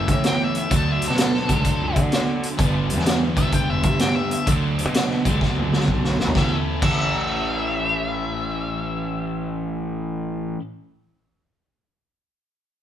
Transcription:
0.00 0.72 A2 medium
0.00 0.69 E3 medium
0.00 0.70 A3 medium
0.00 0.71 C#4 medium
0.00 0.70 E4 medium
0.00 0.10 E5 medium
0.08 0.58 A2 medium
0.08 0.27 E5 medium
0.08 kick medium
0.08 closed hi-hat medium
0.24 0.41 G5 medium
0.24 snare medium
0.24 closed hi-hat medium
0.44 0.57 E5 medium
0.55 0.72 E5 medium
0.55 closed hi-hat medium
0.70 1.10 D2 medium
0.70 1.47 D3 medium
0.70 1.48 F#3 medium
0.70 1.47 A3 medium
0.70 1.48 D4 medium
0.70 kick loud
0.70 closed hi-hat medium
0.77 0.90 A5 medium
0.92 1.05 E5 medium
1.02 closed hi-hat medium
1.08 1.51 B2 medium
1.08 1.97 A4 medium
1.08 snare soft
1.18 snare loud
1.18 closed hi-hat medium
1.35 snare soft
1.48 1.62 C#2 medium
1.48 2.57 D3 medium
1.48 2.59 F#3 medium
1.48 2.58 A3 medium
1.48 2.60 D4 medium
1.48 kick medium
1.48 closed hi-hat medium
1.65 kick medium
1.65 closed hi-hat medium
1.82 1.98 C#2 medium
1.96 2.46 D3 medium
1.96 kick medium
1.96 closed hi-hat medium
2.12 snare medium
2.12 closed hi-hat medium
2.43 closed hi-hat medium
2.58 2.97 G1 medium
2.58 3.35 G2 medium
2.58 3.35 D3 medium
2.58 3.35 G3 medium
2.58 3.34 B3 medium
2.58 3.35 D4 medium
2.58 kick loud
2.58 closed hi-hat medium
2.90 closed hi-hat medium
2.97 3.37 E2 medium
2.97 snare soft
3.06 snare loud
3.06 closed hi-hat medium
3.35 3.50 E1 medium
3.35 4.47 G2 medium
3.35 4.45 D3 medium
3.35 4.46 G3 medium
3.35 4.46 B3 medium
3.35 4.46 D4 medium
3.35 3.53 E5 medium
3.35 kick medium
3.35 closed hi-hat medium
3.52 3.70 G5 medium
3.52 kick medium
3.52 closed hi-hat medium
3.68 3.85 E1 medium
3.68 3.83 E5 medium
3.83 4.34 G2 medium
3.83 4.00 E5 medium
3.83 kick medium
3.83 closed hi-hat medium
3.99 4.15 G5 medium
3.99 snare loud
3.99 closed hi-hat medium
4.16 4.32 E5 medium
4.31 4.48 E5 medium
4.31 closed hi-hat medium
4.46 4.86 D2 medium
4.46 5.23 D3 medium
4.46 5.24 F#3 medium
4.46 5.24 A3 medium
4.46 5.24 D4 loud
4.46 kick loud
4.46 closed hi-hat medium
4.78 closed hi-hat medium
4.86 5.27 B2 medium
4.94 snare loud
4.94 closed hi-hat medium
5.11 snare soft
5.25 5.38 C#2 medium
5.25 6.35 D3 medium
5.25 6.35 F#3 medium
5.25 6.35 A3 medium
5.25 6.34 D4 medium
5.25 kick medium
5.25 closed hi-hat medium
5.41 kick medium
5.41 snare soft
5.56 5.72 C#2 medium
5.56 high tom medium
5.73 5.87 C#2 medium
5.73 snare medium
5.80 snare medium
5.88 6.16 B1 medium
5.88 kick medium
6.04 snare medium
6.20 6.34 A1 medium
6.20 snare medium
6.27 floor tom medium
6.34 6.53 A1 medium
6.34 6.81 A2 medium
6.34 6.81 E3 medium
6.34 6.82 A3 medium
6.34 6.83 C#4 loud
6.34 6.55 E5 loud
6.34 kick loud
6.34 snare medium
6.38 6.84 E4 medium
6.38 6.85 A4 medium
6.81 10.55 A1 medium
6.81 10.58 A2 medium
6.81 10.59 E3 medium
6.81 10.60 A3 medium
6.81 10.61 C#4 medium
6.81 10.61 E4 medium
6.81 10.57 E5 loud
6.81 kick loud
6.81 crash medium
6.85 10.62 A4 medium

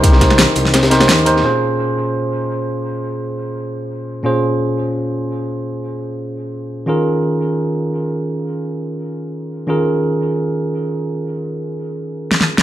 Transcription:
0.00 0.46 C2 medium
0.00 0.02 D#4 loud
0.00 0.89 D#4 medium
0.00 0.03 G4 medium
0.00 0.89 G4 medium
0.00 0.04 A#4 medium
0.00 0.05 C5 loud
0.00 kick loud
0.00 closed hi-hat loud
0.00 closed hi-hat medium
0.04 0.90 A#4 medium
0.04 0.90 C5 medium
0.12 snare medium
0.21 kick medium
0.21 snare soft
0.21 snare medium
0.21 closed hi-hat medium
0.30 snare soft
0.30 snare medium
0.38 snare loud
0.38 closed hi-hat medium
0.38 closed hi-hat loud
0.56 1.10 C2 loud
0.56 closed hi-hat medium
0.65 snare soft
0.74 snare loud
0.74 snare medium
0.74 closed hi-hat medium
0.74 closed hi-hat loud
0.83 snare loud
0.83 closed hi-hat medium
0.90 1.24 D#4 medium
0.90 1.24 G4 medium
0.90 1.24 A#4 medium
0.90 1.25 C5 loud
0.90 snare loud
0.90 closed hi-hat medium
1.00 snare loud
1.00 snare medium
1.00 closed hi-hat medium
1.09 1.43 D#2 medium
1.09 snare loud
1.09 closed hi-hat loud
1.09 closed hi-hat medium
1.18 closed hi-hat soft
1.26 1.42 D#4 medium
1.26 1.42 G4 medium
1.26 1.42 A#4 medium
1.26 1.42 C5 medium
1.26 closed hi-hat medium
1.36 snare soft
1.43 4.22 A#2 medium
1.43 4.22 C#4 medium
1.43 4.23 F4 medium
1.43 4.23 G#4 medium
1.43 4.24 C5 medium
4.23 6.85 A#2 medium
4.23 6.85 C#4 medium
4.23 6.86 F4 medium
4.23 6.86 G#4 medium
4.23 6.87 C5 medium
6.86 9.66 D#3 medium
6.86 9.66 C#4 medium
6.86 9.67 F4 medium
6.86 9.67 G#4 medium
6.86 9.67 A#4 medium
9.67 12.46 D#3 medium
9.67 12.47 C#4 medium
9.67 12.47 F4 medium
9.67 12.48 G#4 medium
9.67 12.48 A#4 medium
12.32 snare medium
12.41 snare medium
12.58 snare medium

